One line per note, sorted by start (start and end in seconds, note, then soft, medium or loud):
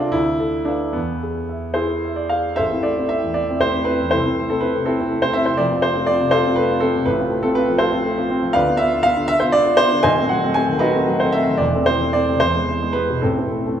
0.00 0.10 C2 medium
0.00 0.18 C4 medium
0.00 0.18 D4 medium
0.00 0.13 F4 medium
0.00 0.18 A4 medium
0.00 0.12 C5 soft
0.00 0.12 E5 soft
0.12 0.93 D2 medium
0.12 0.67 E4 loud
0.40 0.84 A4 soft
0.65 0.94 D4 medium
0.65 0.93 B4 soft
0.65 0.93 F5 soft
0.93 2.56 E2 soft
0.93 2.31 B3 medium
1.23 1.66 G#4 soft
1.49 1.93 E5 soft
1.74 2.15 E4 medium
1.74 2.14 G#4 medium
1.74 2.21 B4 soft
1.74 2.17 C5 medium
2.05 2.49 E5 soft
2.16 2.31 D5 medium
2.29 2.60 G#4 soft
2.29 2.59 F5 medium
2.56 2.72 A1 medium
2.56 2.83 A4 medium
2.56 2.83 C5 medium
2.56 2.85 E5 medium
2.72 2.85 C4 soft
2.72 2.85 E4 medium
2.83 3.07 A3 soft
2.83 3.11 D5 medium
2.98 3.09 C4 soft
2.98 3.10 E4 soft
3.09 3.23 C4 soft
3.09 3.24 E4 soft
3.09 3.36 E5 medium
3.24 3.65 E2 soft
3.34 3.61 D5 medium
3.49 3.61 C4 soft
3.49 3.62 E4 soft
3.61 3.83 A3 soft
3.61 3.87 C5 medium
3.74 3.85 C4 soft
3.74 3.86 E4 soft
3.85 3.99 C4 soft
3.85 3.99 E4 soft
3.85 4.12 B4 medium
4.01 4.13 E2 soft
4.11 4.25 C2 medium
4.11 4.24 E4 medium
4.11 4.48 A4 medium
4.11 4.50 C5 medium
4.25 4.37 C4 soft
4.25 4.37 E4 soft
4.39 4.59 A3 soft
4.50 4.61 C4 soft
4.50 4.61 E4 medium
4.50 4.63 A4 medium
4.61 4.74 C4 soft
4.61 4.74 E4 soft
4.61 4.87 B4 medium
4.75 5.14 C3 soft
4.86 4.99 C4 medium
4.86 4.99 E4 medium
4.86 5.23 A4 medium
5.00 5.11 C4 soft
5.00 5.11 E4 soft
5.11 5.31 A3 soft
5.22 5.34 C4 soft
5.22 5.35 E4 soft
5.22 5.35 C5 medium
5.33 5.47 C4 soft
5.33 5.47 E4 medium
5.33 5.47 E5 medium
5.46 5.60 C3 soft
5.46 5.59 C5 medium
5.57 5.71 F1 medium
5.57 5.72 F2 medium
5.57 5.83 D5 medium
5.72 5.83 C4 soft
5.72 5.83 F4 medium
5.82 6.04 A3 soft
5.82 6.08 C5 loud
5.96 6.07 C4 medium
5.96 6.08 F4 medium
6.06 6.20 C4 soft
6.06 6.20 F4 medium
6.06 6.32 D5 loud
6.21 6.60 C3 medium
6.31 6.45 F4 medium
6.31 6.55 A4 medium
6.31 6.57 C5 loud
6.46 6.57 C4 medium
6.46 6.57 F4 medium
6.56 6.78 A3 medium
6.56 6.81 B4 loud
6.71 6.81 C4 medium
6.71 6.81 F4 medium
6.80 6.94 C4 medium
6.80 6.94 F4 medium
6.80 7.06 A4 medium
6.96 7.08 C3 medium
7.06 7.19 A1 medium
7.06 7.20 A2 medium
7.06 7.44 B4 medium
7.19 7.31 C4 soft
7.19 7.31 F4 medium
7.31 7.52 A3 medium
7.43 7.55 C4 medium
7.43 7.56 F4 medium
7.43 7.56 A4 medium
7.55 7.68 C4 medium
7.55 7.69 F4 medium
7.55 7.81 B4 loud
7.69 8.09 F3 medium
7.78 7.91 F4 medium
7.78 8.03 A4 medium
7.78 8.05 C5 loud
7.92 8.04 C4 medium
7.92 8.04 F4 medium
8.05 8.25 A3 medium
8.18 8.28 C4 soft
8.18 8.29 F4 medium
8.30 8.42 C4 medium
8.30 8.42 F4 medium
8.43 8.55 F3 soft
8.53 8.68 D2 medium
8.53 8.78 B4 medium
8.53 8.78 D5 medium
8.53 8.79 F5 loud
8.68 8.78 B3 medium
8.68 8.79 F4 medium
8.77 8.92 B3 medium
8.77 9.03 E5 loud
8.93 9.03 B3 medium
8.93 9.04 F4 medium
9.03 9.16 B3 medium
9.03 9.16 F4 medium
9.03 9.29 F5 loud
9.17 9.57 D3 medium
9.28 9.41 E5 loud
9.40 9.53 B3 medium
9.40 9.53 F4 medium
9.40 9.53 C5 medium
9.52 9.65 B3 medium
9.52 9.79 D5 loud
9.67 9.77 B3 medium
9.67 9.78 F4 medium
9.77 9.91 B3 medium
9.77 9.91 F4 medium
9.77 10.02 C5 loud
9.92 10.05 D3 medium
10.03 10.16 D#1 medium
10.03 10.17 D#2 medium
10.03 10.28 C5 medium
10.03 10.28 D#5 medium
10.03 10.29 G#5 loud
10.19 10.30 A3 soft
10.19 10.30 C4 medium
10.29 10.51 F#3 medium
10.29 10.55 F#5 medium
10.43 10.55 A3 soft
10.43 10.55 C4 medium
10.54 10.68 A3 medium
10.54 10.68 C4 medium
10.54 10.81 G#5 loud
10.69 11.11 D#3 medium
10.79 11.18 D#4 medium
10.79 11.18 F#4 medium
10.79 11.20 B4 loud
10.94 11.06 A3 medium
10.94 11.06 C4 medium
11.08 11.29 F#3 medium
11.20 11.33 A3 soft
11.20 11.33 C4 medium
11.20 11.34 C5 medium
11.32 11.47 A3 medium
11.32 11.47 C4 medium
11.32 11.60 E5 loud
11.48 11.61 D#3 soft
11.58 11.73 E1 medium
11.58 11.73 E2 medium
11.58 11.86 D5 medium
11.75 11.86 A3 soft
11.75 11.87 C4 medium
11.86 12.09 E3 medium
11.86 12.13 C5 loud
12.01 12.13 A3 soft
12.01 12.13 C4 soft
12.13 12.27 A3 soft
12.13 12.27 C4 medium
12.13 12.41 D5 loud
12.29 12.42 C3 medium
12.40 12.55 E2 medium
12.40 12.95 C5 loud
12.55 12.67 G#3 soft
12.55 12.68 B3 soft
12.69 12.90 E3 medium
12.82 12.94 G#3 soft
12.82 12.94 B3 soft
12.93 13.08 G#3 soft
12.93 13.08 B3 medium
12.93 13.22 B4 medium
13.10 13.23 B2 soft
13.22 13.37 A1 medium
13.22 13.37 A2 medium
13.22 13.37 C4 medium
13.22 13.80 E4 medium
13.22 13.80 A4 medium
13.39 13.50 A3 soft
13.39 13.51 C4 medium
13.52 13.65 A3 soft
13.66 13.79 A3 soft
13.66 13.79 C4 soft